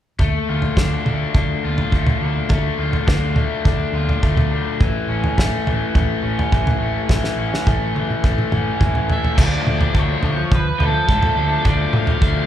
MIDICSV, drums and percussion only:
0, 0, Header, 1, 2, 480
1, 0, Start_track
1, 0, Tempo, 575264
1, 164, Time_signature, 4, 2, 24, 8
1, 5443, Tempo, 569260
1, 10452, End_track
2, 0, Start_track
2, 0, Title_t, "Drums"
2, 158, Note_on_c, 9, 43, 82
2, 161, Note_on_c, 9, 36, 98
2, 241, Note_off_c, 9, 43, 0
2, 244, Note_off_c, 9, 36, 0
2, 518, Note_on_c, 9, 43, 75
2, 602, Note_off_c, 9, 43, 0
2, 641, Note_on_c, 9, 36, 93
2, 646, Note_on_c, 9, 38, 70
2, 725, Note_off_c, 9, 36, 0
2, 729, Note_off_c, 9, 38, 0
2, 884, Note_on_c, 9, 43, 64
2, 884, Note_on_c, 9, 47, 65
2, 967, Note_off_c, 9, 43, 0
2, 967, Note_off_c, 9, 47, 0
2, 1123, Note_on_c, 9, 36, 97
2, 1123, Note_on_c, 9, 43, 77
2, 1206, Note_off_c, 9, 36, 0
2, 1206, Note_off_c, 9, 43, 0
2, 1484, Note_on_c, 9, 43, 78
2, 1568, Note_off_c, 9, 43, 0
2, 1605, Note_on_c, 9, 36, 90
2, 1688, Note_off_c, 9, 36, 0
2, 1723, Note_on_c, 9, 43, 77
2, 1723, Note_on_c, 9, 47, 76
2, 1807, Note_off_c, 9, 43, 0
2, 1807, Note_off_c, 9, 47, 0
2, 2080, Note_on_c, 9, 43, 76
2, 2085, Note_on_c, 9, 36, 102
2, 2164, Note_off_c, 9, 43, 0
2, 2169, Note_off_c, 9, 36, 0
2, 2446, Note_on_c, 9, 43, 76
2, 2530, Note_off_c, 9, 43, 0
2, 2568, Note_on_c, 9, 36, 99
2, 2574, Note_on_c, 9, 38, 68
2, 2651, Note_off_c, 9, 36, 0
2, 2657, Note_off_c, 9, 38, 0
2, 2802, Note_on_c, 9, 43, 70
2, 2802, Note_on_c, 9, 47, 64
2, 2886, Note_off_c, 9, 43, 0
2, 2886, Note_off_c, 9, 47, 0
2, 3048, Note_on_c, 9, 43, 77
2, 3049, Note_on_c, 9, 36, 96
2, 3131, Note_off_c, 9, 43, 0
2, 3132, Note_off_c, 9, 36, 0
2, 3414, Note_on_c, 9, 43, 75
2, 3498, Note_off_c, 9, 43, 0
2, 3530, Note_on_c, 9, 36, 98
2, 3613, Note_off_c, 9, 36, 0
2, 3649, Note_on_c, 9, 43, 81
2, 3649, Note_on_c, 9, 47, 74
2, 3733, Note_off_c, 9, 43, 0
2, 3733, Note_off_c, 9, 47, 0
2, 4010, Note_on_c, 9, 36, 95
2, 4010, Note_on_c, 9, 43, 72
2, 4093, Note_off_c, 9, 36, 0
2, 4094, Note_off_c, 9, 43, 0
2, 4370, Note_on_c, 9, 43, 79
2, 4453, Note_off_c, 9, 43, 0
2, 4489, Note_on_c, 9, 36, 98
2, 4500, Note_on_c, 9, 38, 74
2, 4572, Note_off_c, 9, 36, 0
2, 4583, Note_off_c, 9, 38, 0
2, 4732, Note_on_c, 9, 43, 73
2, 4732, Note_on_c, 9, 47, 65
2, 4815, Note_off_c, 9, 43, 0
2, 4815, Note_off_c, 9, 47, 0
2, 4966, Note_on_c, 9, 36, 94
2, 4969, Note_on_c, 9, 43, 84
2, 5049, Note_off_c, 9, 36, 0
2, 5052, Note_off_c, 9, 43, 0
2, 5332, Note_on_c, 9, 43, 79
2, 5416, Note_off_c, 9, 43, 0
2, 5444, Note_on_c, 9, 36, 96
2, 5528, Note_off_c, 9, 36, 0
2, 5567, Note_on_c, 9, 43, 86
2, 5567, Note_on_c, 9, 47, 70
2, 5651, Note_off_c, 9, 43, 0
2, 5651, Note_off_c, 9, 47, 0
2, 5924, Note_on_c, 9, 36, 104
2, 5929, Note_on_c, 9, 38, 54
2, 6008, Note_off_c, 9, 36, 0
2, 6013, Note_off_c, 9, 38, 0
2, 6049, Note_on_c, 9, 38, 43
2, 6134, Note_off_c, 9, 38, 0
2, 6299, Note_on_c, 9, 38, 48
2, 6384, Note_off_c, 9, 38, 0
2, 6409, Note_on_c, 9, 36, 103
2, 6413, Note_on_c, 9, 48, 60
2, 6493, Note_off_c, 9, 36, 0
2, 6497, Note_off_c, 9, 48, 0
2, 6656, Note_on_c, 9, 48, 64
2, 6740, Note_off_c, 9, 48, 0
2, 6776, Note_on_c, 9, 47, 53
2, 6860, Note_off_c, 9, 47, 0
2, 6890, Note_on_c, 9, 36, 102
2, 6974, Note_off_c, 9, 36, 0
2, 7013, Note_on_c, 9, 47, 58
2, 7097, Note_off_c, 9, 47, 0
2, 7128, Note_on_c, 9, 45, 70
2, 7213, Note_off_c, 9, 45, 0
2, 7369, Note_on_c, 9, 36, 90
2, 7370, Note_on_c, 9, 45, 66
2, 7453, Note_off_c, 9, 36, 0
2, 7455, Note_off_c, 9, 45, 0
2, 7491, Note_on_c, 9, 43, 67
2, 7575, Note_off_c, 9, 43, 0
2, 7612, Note_on_c, 9, 43, 84
2, 7697, Note_off_c, 9, 43, 0
2, 7738, Note_on_c, 9, 43, 69
2, 7822, Note_off_c, 9, 43, 0
2, 7851, Note_on_c, 9, 36, 104
2, 7854, Note_on_c, 9, 43, 86
2, 7854, Note_on_c, 9, 49, 90
2, 7935, Note_off_c, 9, 36, 0
2, 7938, Note_off_c, 9, 43, 0
2, 7938, Note_off_c, 9, 49, 0
2, 8094, Note_on_c, 9, 47, 70
2, 8178, Note_off_c, 9, 47, 0
2, 8211, Note_on_c, 9, 43, 83
2, 8296, Note_off_c, 9, 43, 0
2, 8330, Note_on_c, 9, 36, 107
2, 8414, Note_off_c, 9, 36, 0
2, 8565, Note_on_c, 9, 43, 80
2, 8650, Note_off_c, 9, 43, 0
2, 8810, Note_on_c, 9, 36, 107
2, 8810, Note_on_c, 9, 47, 75
2, 8894, Note_off_c, 9, 36, 0
2, 8895, Note_off_c, 9, 47, 0
2, 9051, Note_on_c, 9, 43, 80
2, 9135, Note_off_c, 9, 43, 0
2, 9290, Note_on_c, 9, 36, 101
2, 9374, Note_off_c, 9, 36, 0
2, 9408, Note_on_c, 9, 43, 86
2, 9492, Note_off_c, 9, 43, 0
2, 9765, Note_on_c, 9, 43, 82
2, 9768, Note_on_c, 9, 36, 106
2, 9849, Note_off_c, 9, 43, 0
2, 9853, Note_off_c, 9, 36, 0
2, 10004, Note_on_c, 9, 47, 73
2, 10088, Note_off_c, 9, 47, 0
2, 10122, Note_on_c, 9, 43, 82
2, 10206, Note_off_c, 9, 43, 0
2, 10245, Note_on_c, 9, 36, 103
2, 10329, Note_off_c, 9, 36, 0
2, 10452, End_track
0, 0, End_of_file